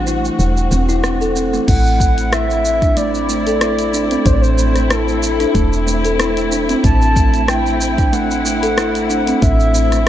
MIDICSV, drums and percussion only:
0, 0, Header, 1, 2, 480
1, 0, Start_track
1, 0, Tempo, 645161
1, 1249, Time_signature, 4, 2, 24, 8
1, 7506, End_track
2, 0, Start_track
2, 0, Title_t, "Drums"
2, 53, Note_on_c, 9, 82, 65
2, 128, Note_off_c, 9, 82, 0
2, 185, Note_on_c, 9, 82, 31
2, 260, Note_off_c, 9, 82, 0
2, 295, Note_on_c, 9, 82, 42
2, 369, Note_off_c, 9, 82, 0
2, 425, Note_on_c, 9, 82, 28
2, 499, Note_off_c, 9, 82, 0
2, 533, Note_on_c, 9, 82, 71
2, 608, Note_off_c, 9, 82, 0
2, 663, Note_on_c, 9, 82, 30
2, 738, Note_off_c, 9, 82, 0
2, 771, Note_on_c, 9, 37, 95
2, 774, Note_on_c, 9, 82, 43
2, 846, Note_off_c, 9, 37, 0
2, 848, Note_off_c, 9, 82, 0
2, 903, Note_on_c, 9, 82, 31
2, 978, Note_off_c, 9, 82, 0
2, 1013, Note_on_c, 9, 82, 76
2, 1088, Note_off_c, 9, 82, 0
2, 1143, Note_on_c, 9, 82, 31
2, 1217, Note_off_c, 9, 82, 0
2, 1249, Note_on_c, 9, 36, 124
2, 1251, Note_on_c, 9, 42, 70
2, 1251, Note_on_c, 9, 49, 107
2, 1253, Note_on_c, 9, 82, 46
2, 1324, Note_off_c, 9, 36, 0
2, 1325, Note_off_c, 9, 42, 0
2, 1325, Note_off_c, 9, 49, 0
2, 1328, Note_off_c, 9, 82, 0
2, 1384, Note_on_c, 9, 82, 31
2, 1458, Note_off_c, 9, 82, 0
2, 1489, Note_on_c, 9, 36, 100
2, 1493, Note_on_c, 9, 82, 85
2, 1563, Note_off_c, 9, 36, 0
2, 1567, Note_off_c, 9, 82, 0
2, 1621, Note_on_c, 9, 42, 30
2, 1623, Note_on_c, 9, 82, 30
2, 1695, Note_off_c, 9, 42, 0
2, 1698, Note_off_c, 9, 82, 0
2, 1731, Note_on_c, 9, 37, 109
2, 1731, Note_on_c, 9, 42, 72
2, 1733, Note_on_c, 9, 82, 45
2, 1805, Note_off_c, 9, 37, 0
2, 1805, Note_off_c, 9, 42, 0
2, 1808, Note_off_c, 9, 82, 0
2, 1864, Note_on_c, 9, 82, 30
2, 1938, Note_off_c, 9, 82, 0
2, 1973, Note_on_c, 9, 82, 73
2, 2047, Note_off_c, 9, 82, 0
2, 2098, Note_on_c, 9, 36, 98
2, 2099, Note_on_c, 9, 42, 30
2, 2102, Note_on_c, 9, 82, 30
2, 2173, Note_off_c, 9, 36, 0
2, 2174, Note_off_c, 9, 42, 0
2, 2176, Note_off_c, 9, 82, 0
2, 2208, Note_on_c, 9, 42, 65
2, 2211, Note_on_c, 9, 82, 44
2, 2283, Note_off_c, 9, 42, 0
2, 2285, Note_off_c, 9, 82, 0
2, 2341, Note_on_c, 9, 82, 29
2, 2416, Note_off_c, 9, 82, 0
2, 2451, Note_on_c, 9, 82, 75
2, 2525, Note_off_c, 9, 82, 0
2, 2579, Note_on_c, 9, 42, 32
2, 2581, Note_on_c, 9, 82, 33
2, 2653, Note_off_c, 9, 42, 0
2, 2656, Note_off_c, 9, 82, 0
2, 2687, Note_on_c, 9, 37, 96
2, 2687, Note_on_c, 9, 42, 64
2, 2690, Note_on_c, 9, 82, 42
2, 2762, Note_off_c, 9, 37, 0
2, 2762, Note_off_c, 9, 42, 0
2, 2764, Note_off_c, 9, 82, 0
2, 2816, Note_on_c, 9, 42, 50
2, 2819, Note_on_c, 9, 82, 34
2, 2891, Note_off_c, 9, 42, 0
2, 2893, Note_off_c, 9, 82, 0
2, 2930, Note_on_c, 9, 82, 84
2, 3004, Note_off_c, 9, 82, 0
2, 3058, Note_on_c, 9, 42, 46
2, 3060, Note_on_c, 9, 82, 32
2, 3132, Note_off_c, 9, 42, 0
2, 3135, Note_off_c, 9, 82, 0
2, 3167, Note_on_c, 9, 36, 125
2, 3167, Note_on_c, 9, 42, 70
2, 3169, Note_on_c, 9, 82, 47
2, 3241, Note_off_c, 9, 36, 0
2, 3241, Note_off_c, 9, 42, 0
2, 3244, Note_off_c, 9, 82, 0
2, 3300, Note_on_c, 9, 82, 33
2, 3374, Note_off_c, 9, 82, 0
2, 3410, Note_on_c, 9, 82, 84
2, 3485, Note_off_c, 9, 82, 0
2, 3538, Note_on_c, 9, 37, 30
2, 3538, Note_on_c, 9, 42, 32
2, 3541, Note_on_c, 9, 82, 35
2, 3613, Note_off_c, 9, 37, 0
2, 3613, Note_off_c, 9, 42, 0
2, 3615, Note_off_c, 9, 82, 0
2, 3650, Note_on_c, 9, 37, 107
2, 3650, Note_on_c, 9, 42, 73
2, 3652, Note_on_c, 9, 82, 47
2, 3724, Note_off_c, 9, 37, 0
2, 3724, Note_off_c, 9, 42, 0
2, 3727, Note_off_c, 9, 82, 0
2, 3782, Note_on_c, 9, 82, 33
2, 3856, Note_off_c, 9, 82, 0
2, 3890, Note_on_c, 9, 82, 82
2, 3965, Note_off_c, 9, 82, 0
2, 4018, Note_on_c, 9, 42, 30
2, 4021, Note_on_c, 9, 82, 33
2, 4093, Note_off_c, 9, 42, 0
2, 4095, Note_off_c, 9, 82, 0
2, 4127, Note_on_c, 9, 36, 104
2, 4129, Note_on_c, 9, 42, 65
2, 4132, Note_on_c, 9, 82, 41
2, 4201, Note_off_c, 9, 36, 0
2, 4204, Note_off_c, 9, 42, 0
2, 4206, Note_off_c, 9, 82, 0
2, 4262, Note_on_c, 9, 82, 30
2, 4337, Note_off_c, 9, 82, 0
2, 4372, Note_on_c, 9, 82, 79
2, 4446, Note_off_c, 9, 82, 0
2, 4498, Note_on_c, 9, 42, 31
2, 4501, Note_on_c, 9, 82, 34
2, 4573, Note_off_c, 9, 42, 0
2, 4575, Note_off_c, 9, 82, 0
2, 4609, Note_on_c, 9, 37, 96
2, 4609, Note_on_c, 9, 42, 64
2, 4612, Note_on_c, 9, 82, 44
2, 4684, Note_off_c, 9, 37, 0
2, 4684, Note_off_c, 9, 42, 0
2, 4686, Note_off_c, 9, 82, 0
2, 4740, Note_on_c, 9, 42, 46
2, 4743, Note_on_c, 9, 82, 33
2, 4814, Note_off_c, 9, 42, 0
2, 4817, Note_off_c, 9, 82, 0
2, 4850, Note_on_c, 9, 82, 84
2, 4924, Note_off_c, 9, 82, 0
2, 4979, Note_on_c, 9, 42, 46
2, 4982, Note_on_c, 9, 82, 33
2, 5054, Note_off_c, 9, 42, 0
2, 5056, Note_off_c, 9, 82, 0
2, 5088, Note_on_c, 9, 36, 119
2, 5089, Note_on_c, 9, 42, 64
2, 5092, Note_on_c, 9, 82, 45
2, 5163, Note_off_c, 9, 36, 0
2, 5163, Note_off_c, 9, 42, 0
2, 5166, Note_off_c, 9, 82, 0
2, 5221, Note_on_c, 9, 82, 32
2, 5295, Note_off_c, 9, 82, 0
2, 5329, Note_on_c, 9, 36, 114
2, 5331, Note_on_c, 9, 82, 86
2, 5403, Note_off_c, 9, 36, 0
2, 5405, Note_off_c, 9, 82, 0
2, 5458, Note_on_c, 9, 42, 29
2, 5460, Note_on_c, 9, 82, 35
2, 5532, Note_off_c, 9, 42, 0
2, 5535, Note_off_c, 9, 82, 0
2, 5568, Note_on_c, 9, 37, 105
2, 5568, Note_on_c, 9, 42, 65
2, 5570, Note_on_c, 9, 82, 49
2, 5642, Note_off_c, 9, 37, 0
2, 5642, Note_off_c, 9, 42, 0
2, 5645, Note_off_c, 9, 82, 0
2, 5702, Note_on_c, 9, 82, 34
2, 5776, Note_off_c, 9, 82, 0
2, 5810, Note_on_c, 9, 82, 78
2, 5885, Note_off_c, 9, 82, 0
2, 5939, Note_on_c, 9, 36, 104
2, 5939, Note_on_c, 9, 42, 29
2, 5942, Note_on_c, 9, 82, 34
2, 6013, Note_off_c, 9, 36, 0
2, 6014, Note_off_c, 9, 42, 0
2, 6016, Note_off_c, 9, 82, 0
2, 6050, Note_on_c, 9, 42, 62
2, 6052, Note_on_c, 9, 82, 44
2, 6124, Note_off_c, 9, 42, 0
2, 6127, Note_off_c, 9, 82, 0
2, 6183, Note_on_c, 9, 82, 32
2, 6257, Note_off_c, 9, 82, 0
2, 6292, Note_on_c, 9, 82, 78
2, 6366, Note_off_c, 9, 82, 0
2, 6420, Note_on_c, 9, 42, 30
2, 6423, Note_on_c, 9, 82, 35
2, 6495, Note_off_c, 9, 42, 0
2, 6497, Note_off_c, 9, 82, 0
2, 6530, Note_on_c, 9, 37, 98
2, 6530, Note_on_c, 9, 42, 62
2, 6532, Note_on_c, 9, 82, 44
2, 6604, Note_off_c, 9, 37, 0
2, 6604, Note_off_c, 9, 42, 0
2, 6607, Note_off_c, 9, 82, 0
2, 6661, Note_on_c, 9, 42, 46
2, 6663, Note_on_c, 9, 82, 35
2, 6735, Note_off_c, 9, 42, 0
2, 6738, Note_off_c, 9, 82, 0
2, 6772, Note_on_c, 9, 82, 80
2, 6847, Note_off_c, 9, 82, 0
2, 6900, Note_on_c, 9, 42, 44
2, 6902, Note_on_c, 9, 82, 35
2, 6974, Note_off_c, 9, 42, 0
2, 6977, Note_off_c, 9, 82, 0
2, 7010, Note_on_c, 9, 36, 125
2, 7010, Note_on_c, 9, 42, 68
2, 7013, Note_on_c, 9, 82, 48
2, 7084, Note_off_c, 9, 36, 0
2, 7085, Note_off_c, 9, 42, 0
2, 7087, Note_off_c, 9, 82, 0
2, 7142, Note_on_c, 9, 82, 32
2, 7217, Note_off_c, 9, 82, 0
2, 7251, Note_on_c, 9, 82, 82
2, 7325, Note_off_c, 9, 82, 0
2, 7382, Note_on_c, 9, 37, 28
2, 7382, Note_on_c, 9, 42, 28
2, 7384, Note_on_c, 9, 82, 34
2, 7456, Note_off_c, 9, 37, 0
2, 7456, Note_off_c, 9, 42, 0
2, 7459, Note_off_c, 9, 82, 0
2, 7506, End_track
0, 0, End_of_file